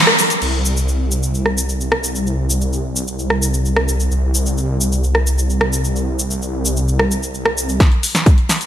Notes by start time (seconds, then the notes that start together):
0.07 cross-stick, closed hi-hat
0.19 open hi-hat, cabasa
0.30 closed hi-hat, cabasa
0.42 C2, crash, cabasa
0.65 cabasa
0.77 cabasa
0.88 cabasa
1.11 cabasa
1.23 cabasa
1.35 cabasa
1.46 cross-stick
1.58 cabasa
1.69 cabasa
1.81 cabasa
1.92 cross-stick
2.04 cabasa
2.15 cabasa
2.27 cabasa
2.50 cabasa
2.61 cabasa
2.73 cabasa
2.96 cabasa
3.08 cabasa
3.19 cabasa
3.30 cross-stick
3.42 cabasa
3.54 cabasa
3.65 cabasa
3.76 cross-stick
3.88 cabasa
4.00 cabasa
4.11 C2, cabasa
4.35 cabasa
4.46 cabasa
4.58 cabasa
4.81 cabasa
4.92 cabasa
5.04 cabasa
5.15 cross-stick
5.27 cabasa
5.38 cabasa
5.50 cabasa
5.61 cross-stick
5.73 cabasa
5.84 cabasa
5.96 cabasa
6.19 cabasa
6.31 cabasa
6.42 cabasa
6.65 cabasa
6.77 cabasa
6.88 cabasa
6.99 cross-stick
7.11 cabasa
7.23 cabasa
7.34 cabasa
7.46 cross-stick
7.58 cabasa
7.69 cabasa
7.80 kick, snare, closed hi-hat, cabasa
7.92 closed hi-hat
8.03 open hi-hat, cabasa
8.15 snare, closed hi-hat, cabasa
8.26 kick, closed hi-hat, cabasa
8.38 closed hi-hat
8.49 snare, open hi-hat, cabasa
8.61 closed hi-hat, cabasa